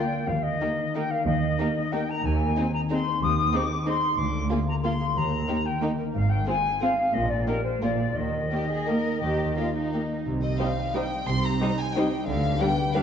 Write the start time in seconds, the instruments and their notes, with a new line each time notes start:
Already playing: harp D3 G#3 A#3 G#4 A#4, flute section G5
0.12 harp A#4
0.28 double bass section D#2, cello section D#2, harp D#3, flute section F5
0.43 harp D#4, flute section D#5
0.61 viola section A#3, violin section D#4 G4, harp A#4
0.78 harp D#4
0.94 harp A#3, viola section A#3, violin section D#4 G4, flute section G5
1.10 harp A#4, flute section F5
1.26 cello section D#2, double bass section D#2, harp D#3, flute section D#5
1.43 harp D#4
1.59 viola section A#3, violin section D#4 G4, harp A#4
1.77 harp D#4
1.92 viola section A#3, harp A#3, violin section D#4 G4, flute section G5
2.09 harp A#4, flute section A#5
2.24 double bass section D#2, cello section D#2, harp D#3, flute section G#5
2.40 harp D#4
2.56 viola section C4, violin section D#4 G#4, harp C5
2.74 harp D#4, flute section A#5
2.90 viola section C4, harp C4, violin section D#4 G#4, flute section C6
3.06 harp C5
3.21 cello section D#2, double bass section D#2, harp D#3, flute section D#6
3.37 harp D#4
3.53 viola section C4, violin section D#4 G#4, harp C5, flute section D6
3.70 harp D#4
3.86 viola section C4, harp C4, violin section D#4 G#4, flute section C6
4.02 harp C5
4.17 double bass section D2, cello section D2, harp D3, flute section D6
4.35 harp A#3
4.50 viola section A#3, violin section F4 G#4, harp G#4
4.67 harp A#3, flute section A#5
4.83 harp G#3, viola section A#3, violin section F4 G#4, flute section C6
5.00 harp G#4
5.15 cello section D#2, double bass section D#2, harp D#3, flute section A#5
5.31 harp D#4
5.48 viola section A#3, violin section D#4 G4, harp A#4
5.64 harp D#4, flute section G5
5.82 viola section A#3, harp A#3, violin section D#4 G4
5.99 harp A#4
6.14 double bass section G#1, cello section G#2, harp G#2, flute section F5
6.29 harp C4, flute section G5
6.46 viola section C4, violin section F4 G#4, harp G#4, flute section G#5
6.65 harp C4
6.81 harp G#3, viola section C4, violin section F4 G#4, flute section F5
6.98 harp G#4
7.14 double bass section A#1, harp A#2, cello section A#2, flute section D#5
7.29 harp A#3, flute section D5
7.47 viola section A#3, violin section D#4 G4, harp G4, flute section A#4
7.63 harp A#3, flute section C5
7.82 double bass section A#1, cello section A#2, harp A#2, viola section A#3, violin section F4 G#4, flute section D5
7.99 harp F4 G#4
8.15 double bass section D#2, harp D#3, cello section D#3, flute section D#5
8.33 harp D#4
8.51 viola section A#3, violin section G4, harp A#4
8.70 harp D#4, violin section G#4
8.87 harp A#3, viola section A#3, violin section G4 A#4
9.05 harp A#4
9.21 double bass section D#2, cello section D#3, harp D#3, violin section G4
9.39 harp D#4
9.57 viola section A#3, violin section F4 G4, harp A#4
9.75 violin section D#4, harp D#4
9.94 harp A#3, viola section A#3, violin section G4
10.11 harp A#4
10.26 double bass section C2, harp C3, cello section C3
10.34 harp G3
10.43 harp C4, violin section D#5
10.52 harp D#4
10.60 viola section G3 D#4, french horn section C4 D#4, violin section G4 C5 F5
10.68 harp C5
10.77 harp D#5
10.86 harp G5
10.94 viola section G3 D#4, french horn section C4 D#4, violin section G4 C5 G5, harp D#5
11.03 harp C5
11.11 harp D#4
11.19 harp C4
11.26 double bass section C2, cello section C3, harp C3, violin section C6
11.35 harp G3
11.44 harp C4, violin section A#5
11.52 harp D#4
11.60 viola section G3 D#4, french horn section C4 D#4, harp G4, violin section G4 C5
11.70 harp C5
11.78 harp D#5, violin section G#5
11.87 harp G5
11.95 viola section G3 D#4, french horn section C4 D#4, violin section G4 C5 G5, harp D#5
12.03 harp C5
12.12 harp D#4
12.19 harp C4
12.27 double bass section D2, cello section D3, harp D3, violin section F5
12.35 harp B3
12.43 harp D4
12.52 harp G4
12.59 viola section G3 D4, french horn section B3 G4, violin section G4 B4 G5, harp B4
12.68 harp D5
12.77 harp G5
12.86 harp B5
12.93 viola section G3 D4, french horn section B3 G4, violin section G4 B4 F5, harp G5